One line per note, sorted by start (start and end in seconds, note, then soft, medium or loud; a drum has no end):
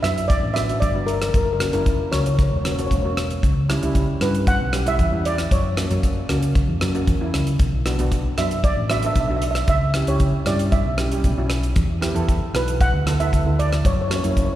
0.03 0.40 F#2 medium
0.03 0.35 B3 medium
0.03 0.35 D4 medium
0.03 0.35 F#4 medium
0.03 0.30 E5 medium
0.03 cross-stick medium
0.03 closed hi-hat medium
0.18 closed hi-hat medium
0.28 0.56 D5 medium
0.28 kick loud
0.28 closed hi-hat medium
0.43 0.79 A1 medium
0.54 0.63 B3 medium
0.54 0.64 D4 medium
0.54 0.64 F#4 medium
0.54 0.82 E5 medium
0.54 cross-stick medium
0.54 closed hi-hat medium
0.68 0.84 B3 medium
0.68 0.84 D4 medium
0.68 0.85 F#4 medium
0.68 closed hi-hat medium
0.80 1.30 G1 medium
0.80 0.92 D5 medium
0.80 kick medium
0.80 closed hi-hat medium
0.94 1.34 B3 medium
0.94 1.34 D4 medium
0.94 1.34 F#4 medium
1.06 1.13 A#4 medium
1.06 closed hi-hat medium
1.15 1.21 A#4 medium
1.22 1.28 A#4 medium
1.22 cross-stick medium
1.22 closed hi-hat medium
1.29 1.36 A#4 medium
1.34 1.71 F#1 medium
1.34 1.44 A#4 medium
1.34 kick loud
1.34 closed hi-hat medium
1.45 1.52 A#4 medium
1.53 1.59 A#4 medium
1.60 1.68 A#3 medium
1.60 1.68 C#4 medium
1.60 1.68 F#4 medium
1.60 1.68 A#4 medium
1.60 cross-stick medium
1.60 closed hi-hat medium
1.73 1.98 F#1 medium
1.73 1.97 A#3 medium
1.73 1.97 C#4 medium
1.73 1.97 E4 medium
1.73 2.13 A#4 medium
1.73 closed hi-hat medium
1.86 kick medium
1.86 closed hi-hat medium
2.12 2.49 C#2 medium
2.12 2.44 A#3 medium
2.12 2.44 C#4 medium
2.12 2.44 F#4 medium
2.12 2.19 C#5 medium
2.12 cross-stick medium
2.12 closed hi-hat medium
2.20 2.25 C#5 soft
2.26 2.33 C#5 medium
2.26 closed hi-hat medium
2.34 2.42 C#5 soft
2.39 kick loud
2.39 closed hi-hat medium
2.43 2.49 C#5 medium
2.50 2.88 E1 medium
2.50 2.56 C#5 soft
2.57 2.63 C#5 soft
2.64 2.73 A#3 medium
2.64 2.73 C#4 medium
2.64 2.73 F#4 medium
2.64 2.71 C#5 soft
2.64 cross-stick medium
2.64 closed hi-hat medium
2.72 2.79 C#5 soft
2.78 2.94 A#3 medium
2.78 2.94 C#4 medium
2.78 2.94 F#4 medium
2.78 2.85 C#5 soft
2.78 closed hi-hat soft
2.87 2.94 C#5 medium
2.91 3.39 E1 medium
2.91 3.01 C#5 soft
2.91 kick medium
2.91 closed hi-hat soft
3.02 3.43 A#3 medium
3.02 3.43 C#4 medium
3.02 3.44 F#4 medium
3.02 3.09 C#5 medium
3.17 cross-stick medium
3.17 closed hi-hat medium
3.30 closed hi-hat medium
3.43 3.79 C#2 medium
3.43 kick medium
3.43 closed hi-hat medium
3.69 3.77 G3 medium
3.69 3.77 C#4 medium
3.69 3.77 E4 medium
3.69 cross-stick medium
3.69 closed hi-hat medium
3.82 4.06 C#2 medium
3.82 4.06 G3 medium
3.82 4.06 C#4 medium
3.82 4.06 E4 medium
3.82 closed hi-hat medium
3.95 kick medium
3.95 closed hi-hat medium
4.21 4.58 G2 medium
4.21 4.52 G3 medium
4.21 4.53 C#4 medium
4.21 4.53 E4 medium
4.21 4.46 B4 medium
4.21 cross-stick medium
4.21 closed hi-hat medium
4.35 closed hi-hat medium
4.47 4.88 F#5 medium
4.47 kick loud
4.47 closed hi-hat medium
4.61 4.97 B1 medium
4.73 4.81 G3 medium
4.73 4.81 C#4 medium
4.73 4.82 G4 medium
4.73 cross-stick medium
4.73 closed hi-hat medium
4.86 5.02 G3 medium
4.86 5.02 C#4 medium
4.86 5.02 E4 medium
4.86 5.27 E5 medium
4.86 closed hi-hat medium
4.99 5.47 E2 medium
4.99 kick medium
4.99 closed hi-hat medium
5.12 5.51 G3 medium
5.12 5.51 C#4 medium
5.12 5.51 E4 medium
5.25 5.52 D5 medium
5.25 closed hi-hat medium
5.38 cross-stick medium
5.38 closed hi-hat medium
5.51 5.88 F#2 medium
5.51 6.52 C#5 medium
5.51 kick loud
5.51 closed hi-hat medium
5.77 5.85 A#3 medium
5.77 5.85 C#4 medium
5.77 5.86 F#4 medium
5.77 cross-stick medium
5.77 closed hi-hat medium
5.90 6.15 F#2 medium
5.90 6.14 A#3 medium
5.90 6.14 C#4 medium
5.90 6.14 F#4 medium
5.90 closed hi-hat medium
6.03 kick medium
6.03 closed hi-hat medium
6.29 6.66 C#2 medium
6.29 6.61 A#3 medium
6.29 6.61 C#4 medium
6.29 6.61 F#4 medium
6.29 cross-stick medium
6.29 closed hi-hat medium
6.42 closed hi-hat medium
6.55 kick loud
6.55 closed hi-hat medium
6.69 6.81 E2 medium
6.81 7.05 F#2 medium
6.81 6.89 A#3 medium
6.81 6.89 C#4 medium
6.81 6.90 F#4 medium
6.81 cross-stick medium
6.81 closed hi-hat medium
6.94 7.10 A#3 medium
6.94 7.10 C#4 medium
6.94 7.10 F#4 medium
6.94 closed hi-hat soft
7.07 7.31 E2 medium
7.07 kick medium
7.07 closed hi-hat medium
7.20 7.59 A#3 medium
7.20 7.60 C#4 medium
7.20 7.60 E4 medium
7.33 7.57 C#2 medium
7.33 cross-stick medium
7.33 closed hi-hat medium
7.47 closed hi-hat medium
7.59 7.96 B1 medium
7.59 kick loud
7.59 closed hi-hat medium
7.86 7.94 B3 medium
7.86 7.94 D4 medium
7.86 7.94 F#4 medium
7.86 cross-stick medium
7.86 closed hi-hat medium
7.98 8.23 B1 medium
7.98 8.22 B3 medium
7.98 8.23 D4 medium
7.98 8.23 F#4 medium
7.98 closed hi-hat medium
8.12 kick medium
8.12 closed hi-hat medium
8.37 8.74 F#2 medium
8.37 8.69 B3 medium
8.37 8.69 D4 medium
8.37 8.70 F#4 medium
8.37 8.65 E5 medium
8.37 cross-stick medium
8.37 closed hi-hat medium
8.51 closed hi-hat medium
8.64 8.91 D5 medium
8.64 kick loud
8.64 closed hi-hat medium
8.77 9.13 A1 medium
8.90 8.98 B3 medium
8.90 8.98 D4 medium
8.90 8.98 F#4 medium
8.90 8.96 E5 medium
8.90 cross-stick medium
8.90 closed hi-hat medium
8.98 9.05 E5 medium
9.03 9.19 B3 medium
9.03 9.19 D4 medium
9.03 9.19 A4 medium
9.03 closed hi-hat medium
9.07 9.12 E5 medium
9.13 9.64 B1 medium
9.13 9.19 E5 medium
9.13 kick medium
9.13 closed hi-hat medium
9.20 9.27 E5 medium
9.28 9.68 B3 medium
9.28 9.68 D4 medium
9.28 9.69 F#4 medium
9.28 9.35 E5 medium
9.36 9.42 E5 medium
9.42 9.50 E5 medium
9.42 closed hi-hat medium
9.51 9.58 E5 medium
9.55 cross-stick medium
9.55 closed hi-hat medium
9.68 10.04 C#2 medium
9.68 10.05 E5 medium
9.68 kick medium
9.68 closed hi-hat medium
9.94 10.02 C#4 medium
9.94 10.03 E4 medium
9.94 10.03 G4 medium
9.94 cross-stick medium
9.94 closed hi-hat medium
10.07 10.32 C#2 medium
10.07 10.31 C#4 medium
10.07 10.31 E4 medium
10.07 10.31 G4 medium
10.07 10.48 C#5 medium
10.07 closed hi-hat medium
10.20 kick medium
10.20 closed hi-hat medium
10.46 10.83 G2 medium
10.46 10.78 C#4 medium
10.46 10.78 E4 medium
10.46 10.78 G4 medium
10.46 10.73 D5 medium
10.46 cross-stick medium
10.46 closed hi-hat medium
10.59 closed hi-hat medium
10.72 11.46 E5 medium
10.72 kick loud
10.72 closed hi-hat medium
10.86 11.22 B1 medium
10.98 11.06 C#4 medium
10.98 11.06 E4 medium
10.98 11.06 G4 medium
10.98 cross-stick medium
10.98 closed hi-hat medium
11.12 11.27 C#4 medium
11.12 11.27 E4 medium
11.12 11.27 G4 medium
11.12 closed hi-hat medium
11.24 11.73 B1 medium
11.24 kick medium
11.24 closed hi-hat medium
11.38 11.76 C#4 medium
11.38 11.77 E4 medium
11.38 11.77 F#4 medium
11.50 cross-stick medium
11.50 closed hi-hat medium
11.63 closed hi-hat soft
11.76 12.13 E2 medium
11.76 kick loud
11.76 closed hi-hat medium
12.01 12.10 B3 medium
12.01 12.10 E4 medium
12.01 12.10 G4 medium
12.01 cross-stick medium
12.01 closed hi-hat medium
12.14 12.40 E2 medium
12.14 12.38 B3 medium
12.14 12.39 E4 medium
12.14 12.39 A4 medium
12.14 closed hi-hat soft
12.29 kick medium
12.29 closed hi-hat medium
12.54 12.91 B1 medium
12.54 12.85 B3 medium
12.54 12.86 E4 medium
12.54 12.86 F#4 medium
12.54 12.80 B4 medium
12.54 cross-stick medium
12.54 closed hi-hat medium
12.68 closed hi-hat medium
12.81 13.21 F#5 medium
12.81 kick loud
12.81 closed hi-hat medium
12.94 13.30 D2 medium
13.06 13.14 B3 medium
13.06 13.14 E4 medium
13.06 13.15 A4 medium
13.06 cross-stick medium
13.06 closed hi-hat medium
13.20 13.35 B3 medium
13.20 13.36 E4 medium
13.20 13.36 A4 medium
13.20 13.60 E5 medium
13.20 closed hi-hat medium
13.33 13.81 D2 medium
13.33 kick medium
13.33 closed hi-hat medium
13.45 13.84 B3 medium
13.45 13.85 E4 medium
13.45 13.85 A4 medium
13.59 13.86 D5 medium
13.59 closed hi-hat medium
13.73 cross-stick medium
13.73 closed hi-hat medium
13.85 14.21 F#2 medium
13.85 13.92 C#5 medium
13.85 kick loud
13.85 closed hi-hat medium
13.93 14.00 C#5 soft
14.02 14.07 C#5 medium
14.08 14.18 A#3 medium
14.08 14.18 C#4 medium
14.08 14.18 F#4 medium
14.08 14.15 C#5 soft
14.08 cross-stick medium
14.08 closed hi-hat medium
14.16 14.22 C#5 medium
14.24 14.48 F#2 medium
14.24 14.47 A#3 medium
14.24 14.47 C#4 medium
14.24 14.47 E4 medium
14.24 14.29 C#5 soft
14.24 closed hi-hat medium
14.31 14.37 C#5 soft
14.37 14.44 C#5 soft
14.37 kick medium
14.37 closed hi-hat medium
14.45 14.52 C#5 medium